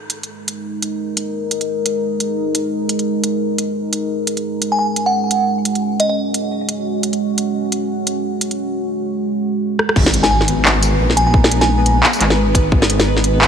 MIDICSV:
0, 0, Header, 1, 7, 480
1, 0, Start_track
1, 0, Key_signature, 5, "minor"
1, 0, Tempo, 344828
1, 427, Time_signature, 4, 2, 24, 8
1, 18757, End_track
2, 0, Start_track
2, 0, Title_t, "Synth bell"
2, 0, Program_c, 0, 98
2, 6568, Note_on_c, 0, 80, 78
2, 6632, Note_off_c, 0, 80, 0
2, 6664, Note_on_c, 0, 80, 69
2, 6753, Note_off_c, 0, 80, 0
2, 7046, Note_on_c, 0, 78, 81
2, 7711, Note_off_c, 0, 78, 0
2, 8349, Note_on_c, 0, 75, 82
2, 8436, Note_off_c, 0, 75, 0
2, 8483, Note_on_c, 0, 75, 68
2, 8550, Note_off_c, 0, 75, 0
2, 14240, Note_on_c, 0, 80, 86
2, 14308, Note_off_c, 0, 80, 0
2, 14348, Note_on_c, 0, 80, 78
2, 14435, Note_off_c, 0, 80, 0
2, 15545, Note_on_c, 0, 80, 85
2, 15634, Note_off_c, 0, 80, 0
2, 15684, Note_on_c, 0, 80, 80
2, 15750, Note_off_c, 0, 80, 0
2, 16162, Note_on_c, 0, 80, 89
2, 16643, Note_off_c, 0, 80, 0
2, 18757, End_track
3, 0, Start_track
3, 0, Title_t, "Synth texture"
3, 0, Program_c, 1, 99
3, 13861, Note_on_c, 1, 71, 83
3, 13864, Note_on_c, 1, 59, 80
3, 18757, Note_off_c, 1, 59, 0
3, 18757, Note_off_c, 1, 71, 0
3, 18757, End_track
4, 0, Start_track
4, 0, Title_t, "Ambient pad"
4, 0, Program_c, 2, 92
4, 0, Note_on_c, 2, 56, 79
4, 0, Note_on_c, 2, 63, 74
4, 0, Note_on_c, 2, 70, 89
4, 6130, Note_off_c, 2, 63, 0
4, 6158, Note_off_c, 2, 70, 0
4, 6177, Note_on_c, 2, 66, 88
4, 6180, Note_on_c, 2, 61, 72
4, 13808, Note_off_c, 2, 61, 0
4, 13812, Note_off_c, 2, 56, 0
4, 13834, Note_off_c, 2, 66, 0
4, 13864, Note_on_c, 2, 63, 75
4, 13866, Note_on_c, 2, 82, 94
4, 13867, Note_on_c, 2, 56, 84
4, 17695, Note_off_c, 2, 82, 0
4, 17710, Note_on_c, 2, 68, 92
4, 18757, Note_off_c, 2, 56, 0
4, 18757, Note_off_c, 2, 63, 0
4, 18757, Note_off_c, 2, 68, 0
4, 18757, End_track
5, 0, Start_track
5, 0, Title_t, "Detuned saw bass"
5, 0, Program_c, 3, 39
5, 13865, Note_on_c, 3, 32, 95
5, 15290, Note_off_c, 3, 32, 0
5, 15306, Note_on_c, 3, 34, 92
5, 16730, Note_off_c, 3, 34, 0
5, 16986, Note_on_c, 3, 32, 100
5, 17690, Note_off_c, 3, 32, 0
5, 17707, Note_on_c, 3, 32, 97
5, 18757, Note_off_c, 3, 32, 0
5, 18757, End_track
6, 0, Start_track
6, 0, Title_t, "Impact"
6, 0, Program_c, 4, 103
6, 13866, Note_on_c, 4, 60, 75
6, 15787, Note_off_c, 4, 60, 0
6, 18757, End_track
7, 0, Start_track
7, 0, Title_t, "Drums"
7, 137, Note_on_c, 9, 42, 60
7, 276, Note_off_c, 9, 42, 0
7, 326, Note_on_c, 9, 42, 34
7, 465, Note_off_c, 9, 42, 0
7, 667, Note_on_c, 9, 42, 74
7, 806, Note_off_c, 9, 42, 0
7, 1147, Note_on_c, 9, 42, 64
7, 1286, Note_off_c, 9, 42, 0
7, 1628, Note_on_c, 9, 42, 74
7, 1767, Note_off_c, 9, 42, 0
7, 2104, Note_on_c, 9, 42, 65
7, 2241, Note_off_c, 9, 42, 0
7, 2241, Note_on_c, 9, 42, 35
7, 2380, Note_off_c, 9, 42, 0
7, 2584, Note_on_c, 9, 42, 73
7, 2723, Note_off_c, 9, 42, 0
7, 3065, Note_on_c, 9, 42, 62
7, 3204, Note_off_c, 9, 42, 0
7, 3546, Note_on_c, 9, 42, 74
7, 3685, Note_off_c, 9, 42, 0
7, 4027, Note_on_c, 9, 42, 64
7, 4165, Note_off_c, 9, 42, 0
7, 4165, Note_on_c, 9, 42, 33
7, 4304, Note_off_c, 9, 42, 0
7, 4504, Note_on_c, 9, 42, 71
7, 4643, Note_off_c, 9, 42, 0
7, 4989, Note_on_c, 9, 42, 62
7, 5129, Note_off_c, 9, 42, 0
7, 5466, Note_on_c, 9, 42, 72
7, 5605, Note_off_c, 9, 42, 0
7, 5946, Note_on_c, 9, 42, 62
7, 6083, Note_off_c, 9, 42, 0
7, 6083, Note_on_c, 9, 42, 33
7, 6223, Note_off_c, 9, 42, 0
7, 6426, Note_on_c, 9, 42, 67
7, 6565, Note_off_c, 9, 42, 0
7, 6909, Note_on_c, 9, 42, 59
7, 7048, Note_off_c, 9, 42, 0
7, 7388, Note_on_c, 9, 42, 69
7, 7527, Note_off_c, 9, 42, 0
7, 7868, Note_on_c, 9, 42, 60
7, 8007, Note_off_c, 9, 42, 0
7, 8009, Note_on_c, 9, 42, 32
7, 8148, Note_off_c, 9, 42, 0
7, 8348, Note_on_c, 9, 42, 67
7, 8487, Note_off_c, 9, 42, 0
7, 8829, Note_on_c, 9, 42, 59
7, 8968, Note_off_c, 9, 42, 0
7, 9307, Note_on_c, 9, 42, 68
7, 9447, Note_off_c, 9, 42, 0
7, 9789, Note_on_c, 9, 42, 59
7, 9925, Note_off_c, 9, 42, 0
7, 9925, Note_on_c, 9, 42, 32
7, 10064, Note_off_c, 9, 42, 0
7, 10270, Note_on_c, 9, 42, 70
7, 10409, Note_off_c, 9, 42, 0
7, 10748, Note_on_c, 9, 42, 60
7, 10887, Note_off_c, 9, 42, 0
7, 11231, Note_on_c, 9, 42, 72
7, 11370, Note_off_c, 9, 42, 0
7, 11709, Note_on_c, 9, 42, 63
7, 11847, Note_off_c, 9, 42, 0
7, 11847, Note_on_c, 9, 42, 33
7, 11986, Note_off_c, 9, 42, 0
7, 13630, Note_on_c, 9, 37, 59
7, 13768, Note_off_c, 9, 37, 0
7, 13768, Note_on_c, 9, 37, 65
7, 13865, Note_on_c, 9, 36, 117
7, 13873, Note_on_c, 9, 49, 104
7, 13907, Note_off_c, 9, 37, 0
7, 14004, Note_off_c, 9, 36, 0
7, 14008, Note_on_c, 9, 38, 85
7, 14013, Note_off_c, 9, 49, 0
7, 14111, Note_on_c, 9, 42, 82
7, 14147, Note_off_c, 9, 38, 0
7, 14248, Note_on_c, 9, 38, 64
7, 14248, Note_on_c, 9, 54, 37
7, 14250, Note_off_c, 9, 42, 0
7, 14387, Note_off_c, 9, 38, 0
7, 14387, Note_off_c, 9, 54, 0
7, 14487, Note_on_c, 9, 38, 38
7, 14588, Note_on_c, 9, 42, 69
7, 14626, Note_off_c, 9, 38, 0
7, 14727, Note_off_c, 9, 42, 0
7, 14827, Note_on_c, 9, 39, 117
7, 14967, Note_off_c, 9, 39, 0
7, 15069, Note_on_c, 9, 42, 84
7, 15069, Note_on_c, 9, 54, 66
7, 15208, Note_off_c, 9, 42, 0
7, 15208, Note_off_c, 9, 54, 0
7, 15447, Note_on_c, 9, 38, 37
7, 15549, Note_on_c, 9, 42, 74
7, 15586, Note_off_c, 9, 38, 0
7, 15688, Note_off_c, 9, 42, 0
7, 15784, Note_on_c, 9, 36, 121
7, 15923, Note_off_c, 9, 36, 0
7, 15927, Note_on_c, 9, 38, 82
7, 16029, Note_on_c, 9, 42, 84
7, 16066, Note_off_c, 9, 38, 0
7, 16166, Note_on_c, 9, 38, 62
7, 16166, Note_on_c, 9, 54, 35
7, 16168, Note_off_c, 9, 42, 0
7, 16305, Note_off_c, 9, 38, 0
7, 16305, Note_off_c, 9, 54, 0
7, 16509, Note_on_c, 9, 42, 71
7, 16648, Note_off_c, 9, 42, 0
7, 16749, Note_on_c, 9, 39, 124
7, 16888, Note_off_c, 9, 39, 0
7, 16888, Note_on_c, 9, 54, 63
7, 16990, Note_on_c, 9, 39, 37
7, 16990, Note_on_c, 9, 42, 81
7, 17027, Note_off_c, 9, 54, 0
7, 17126, Note_on_c, 9, 38, 53
7, 17129, Note_off_c, 9, 39, 0
7, 17129, Note_off_c, 9, 42, 0
7, 17265, Note_off_c, 9, 38, 0
7, 17466, Note_on_c, 9, 36, 112
7, 17470, Note_on_c, 9, 42, 74
7, 17470, Note_on_c, 9, 54, 38
7, 17605, Note_off_c, 9, 36, 0
7, 17609, Note_off_c, 9, 42, 0
7, 17609, Note_off_c, 9, 54, 0
7, 17706, Note_on_c, 9, 36, 126
7, 17845, Note_off_c, 9, 36, 0
7, 17846, Note_on_c, 9, 38, 78
7, 17953, Note_on_c, 9, 42, 81
7, 17985, Note_off_c, 9, 38, 0
7, 18089, Note_on_c, 9, 38, 60
7, 18089, Note_on_c, 9, 54, 35
7, 18092, Note_off_c, 9, 42, 0
7, 18229, Note_off_c, 9, 38, 0
7, 18229, Note_off_c, 9, 54, 0
7, 18326, Note_on_c, 9, 38, 36
7, 18431, Note_on_c, 9, 42, 69
7, 18465, Note_off_c, 9, 38, 0
7, 18570, Note_off_c, 9, 42, 0
7, 18672, Note_on_c, 9, 39, 127
7, 18757, Note_off_c, 9, 39, 0
7, 18757, End_track
0, 0, End_of_file